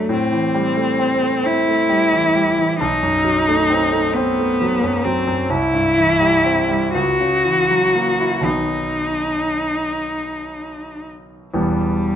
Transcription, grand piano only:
0.00 0.14 F#3 soft
0.00 0.13 A3 soft
0.00 0.13 D4 soft
0.09 2.75 A2 medium
0.32 0.68 E3 soft
0.54 0.90 G3 soft
0.76 1.13 A3 soft
0.99 1.36 C4 soft
1.22 1.59 A3 soft
1.44 1.81 C4 soft
1.68 2.04 A3 soft
1.89 2.26 G3 soft
2.12 2.48 E3 soft
2.35 2.71 G3 soft
2.58 2.80 E3 soft
2.80 5.47 B1 medium
3.03 3.38 F#2 soft
3.24 3.60 F#3 soft
3.48 3.84 A3 soft
3.70 4.06 C4 soft
3.92 4.29 A3 soft
4.16 4.52 C4 soft
4.39 4.75 A3 soft
4.61 4.97 F#3 soft
4.83 5.19 F#2 soft
5.05 5.41 F#3 soft
5.27 5.50 F#2 soft
5.49 6.90 C2 medium
5.74 6.12 G2 soft
5.97 6.36 E3 soft
6.20 6.60 G3 soft
6.44 6.85 C4 soft
6.69 6.94 G3 soft
6.94 8.40 C#2 soft
7.20 7.59 C#3 soft
7.45 7.84 E3 soft
7.70 8.10 F#3 soft
7.95 8.35 A#3 soft
8.21 8.46 E4 soft
8.40 11.49 B1 soft
8.40 11.49 D#3 soft
8.40 11.50 F#3 soft
8.44 11.51 B3 soft
11.54 12.16 E1 soft
11.54 12.16 E2 soft
11.54 12.16 E3 soft
11.54 12.16 G3 soft
11.54 12.16 B3 soft

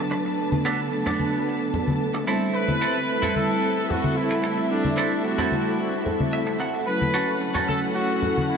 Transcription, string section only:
0.00 2.24 D4 medium
0.00 2.24 B4 medium
0.00 2.24 A5 medium
2.28 6.83 C4 medium
2.28 8.57 A4 medium
2.28 6.83 E5 medium
6.87 8.57 C#4 medium
6.87 8.57 F#5 medium

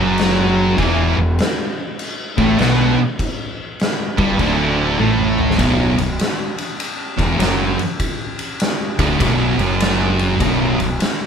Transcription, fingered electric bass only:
0.00 0.75 F#1 loud
0.78 1.15 E1 loud
1.18 1.37 E1 medium
2.38 2.57 A1 loud
2.59 2.95 B1 medium
4.18 4.38 G1 loud
4.39 4.95 D1 loud
4.99 5.55 A1 medium
5.59 5.96 B0 loud
5.99 6.18 B0 medium
7.19 7.38 E1 medium
7.39 7.75 F#1 medium
8.99 9.18 D1 medium
9.20 9.56 B0 medium
9.58 10.35 F#1 loud
10.40 10.76 B0 loud
10.78 10.98 B0 medium

